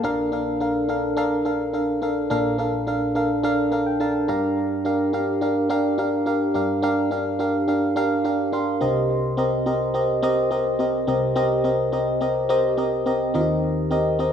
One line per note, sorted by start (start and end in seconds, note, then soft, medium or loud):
0.04 2.27 A#1 medium
0.04 2.27 A#2 medium
0.04 0.28 D4 loud
0.04 0.28 A4 medium
0.04 0.28 A#4 loud
0.04 0.28 F5 loud
0.32 0.56 D4 medium
0.32 0.56 A4 medium
0.32 0.57 A#4 medium
0.32 0.57 F5 medium
0.60 0.84 D4 medium
0.60 0.85 A4 medium
0.60 0.85 A#4 medium
0.60 0.85 F5 medium
0.88 1.13 D4 medium
0.88 1.13 A4 medium
0.88 1.13 A#4 medium
0.88 1.13 F5 medium
1.17 1.41 D4 loud
1.17 1.41 A4 loud
1.17 1.41 A#4 medium
1.17 1.42 F5 loud
1.45 1.69 D4 medium
1.45 1.69 A4 medium
1.45 1.70 A#4 medium
1.45 1.70 F5 medium
1.73 1.98 D4 medium
1.73 1.98 A4 medium
1.73 1.98 A#4 medium
1.73 1.98 F5 medium
2.02 2.26 D4 medium
2.02 2.26 A4 medium
2.02 2.26 A#4 medium
2.02 2.27 F5 medium
2.30 4.25 A#1 medium
2.30 4.25 A#2 medium
2.30 2.54 D4 loud
2.30 2.54 A4 medium
2.30 2.55 A#4 loud
2.30 2.55 F5 loud
2.58 2.82 D4 medium
2.58 2.83 A4 medium
2.58 2.83 A#4 medium
2.58 2.83 F5 medium
2.87 3.11 D4 medium
2.87 3.11 A4 medium
2.87 3.11 A#4 medium
2.87 3.11 F5 medium
3.15 3.39 D4 medium
3.15 3.39 A4 medium
3.15 3.40 A#4 medium
3.15 3.40 F5 medium
3.43 3.67 D4 loud
3.43 3.68 A4 medium
3.43 3.68 A#4 loud
3.43 3.68 F5 loud
3.72 3.96 D4 medium
3.72 3.96 A4 medium
3.72 3.96 A#4 medium
3.72 3.96 F5 medium
3.86 4.00 G5 medium
4.00 4.24 D4 medium
4.00 4.24 A4 medium
4.00 4.24 A#4 medium
4.00 4.25 F5 medium
4.00 4.27 A5 medium
4.28 6.51 G2 medium
4.28 4.76 D4 medium
4.28 4.76 G4 medium
4.28 4.77 A#4 medium
4.28 4.77 F5 medium
4.28 4.55 A#5 medium
4.85 5.09 D4 medium
4.85 5.09 G4 medium
4.85 5.09 A#4 medium
4.85 5.10 F5 medium
5.13 5.37 D4 medium
5.13 5.37 G4 medium
5.13 5.38 A#4 medium
5.13 5.38 F5 medium
5.41 5.66 D4 medium
5.41 5.66 G4 medium
5.41 5.66 A#4 medium
5.41 5.66 F5 medium
5.69 5.94 D4 loud
5.69 5.94 G4 loud
5.69 5.94 A#4 loud
5.69 5.94 F5 loud
5.98 6.22 D4 medium
5.98 6.22 G4 medium
5.98 6.23 A#4 medium
5.98 6.23 F5 medium
6.26 6.50 D4 medium
6.26 6.50 G4 medium
6.26 6.51 A#4 medium
6.26 6.51 F5 medium
6.54 8.77 G2 medium
6.54 6.79 D4 medium
6.54 6.79 G4 medium
6.54 6.79 A#4 medium
6.54 6.79 F5 medium
6.82 7.07 D4 loud
6.82 7.07 G4 medium
6.82 7.07 A#4 medium
6.82 7.07 F5 loud
7.11 7.35 D4 medium
7.11 7.35 G4 medium
7.11 7.36 A#4 medium
7.11 7.36 F5 medium
7.39 7.63 D4 medium
7.39 7.64 G4 medium
7.39 7.64 A#4 medium
7.39 7.64 F5 medium
7.68 7.92 D4 medium
7.68 7.92 G4 medium
7.68 7.92 A#4 medium
7.68 7.92 F5 medium
7.96 8.20 D4 loud
7.96 8.20 G4 medium
7.96 8.21 A#4 loud
7.96 8.21 F5 loud
8.24 8.48 D4 medium
8.24 8.49 G4 medium
8.24 8.49 A#4 medium
8.24 8.49 F5 medium
8.52 8.77 D4 medium
8.52 8.77 G4 medium
8.52 8.77 A#4 medium
8.52 8.77 F5 medium
8.52 9.06 C6 medium
8.81 11.04 C2 medium
8.81 11.04 C3 medium
8.81 9.29 C4 medium
8.81 9.29 G4 medium
8.81 9.29 A#4 medium
8.81 9.29 D#5 medium
9.37 9.62 C4 medium
9.37 9.62 G4 medium
9.37 9.62 A#4 medium
9.37 9.62 D#5 medium
9.66 9.90 C4 medium
9.66 9.90 G4 medium
9.66 9.90 A#4 medium
9.66 9.91 D#5 medium
9.94 10.18 C4 medium
9.94 10.18 G4 medium
9.94 10.19 A#4 medium
9.94 10.19 D#5 medium
10.22 10.47 C4 loud
10.22 10.47 G4 loud
10.22 10.47 A#4 medium
10.22 10.47 D#5 loud
10.51 10.75 C4 medium
10.51 10.75 G4 medium
10.51 10.75 A#4 medium
10.51 10.76 D#5 medium
10.79 11.03 C4 medium
10.79 11.03 G4 medium
10.79 11.04 A#4 medium
10.79 11.04 D#5 medium
11.07 13.30 C2 medium
11.07 13.30 C3 medium
11.07 11.31 C4 medium
11.07 11.32 G4 medium
11.07 11.32 A#4 medium
11.07 11.32 D#5 medium
11.36 11.60 C4 loud
11.36 11.60 G4 loud
11.36 11.60 A#4 medium
11.36 11.60 D#5 loud
11.64 11.88 C4 medium
11.64 11.88 G4 medium
11.64 11.88 A#4 medium
11.64 11.89 D#5 medium
11.92 12.16 C4 medium
11.92 12.17 G4 medium
11.92 12.17 A#4 medium
11.92 12.17 D#5 medium
12.21 12.45 C4 medium
12.21 12.45 G4 medium
12.21 12.45 A#4 medium
12.21 12.45 D#5 medium
12.49 12.73 C4 loud
12.49 12.73 G4 loud
12.49 12.74 A#4 medium
12.49 12.74 D#5 loud
12.77 13.01 C4 medium
12.77 13.02 G4 medium
12.77 13.02 A#4 medium
12.77 13.02 D#5 loud
13.06 13.30 C4 medium
13.06 13.30 G4 medium
13.06 13.30 A#4 medium
13.06 13.30 D#5 medium
13.34 14.33 D#2 medium
13.34 14.33 D#3 medium
13.34 13.82 C4 medium
13.34 13.41 F4 medium
13.34 13.82 A#4 medium
13.34 13.83 D#5 medium
13.41 13.85 G4 medium
13.91 14.15 C4 medium
13.91 14.15 G4 medium
13.91 14.15 A#4 medium
13.91 14.15 D#5 loud
14.19 14.33 C4 medium
14.19 14.33 G4 medium
14.19 14.33 A#4 medium
14.19 14.33 D#5 medium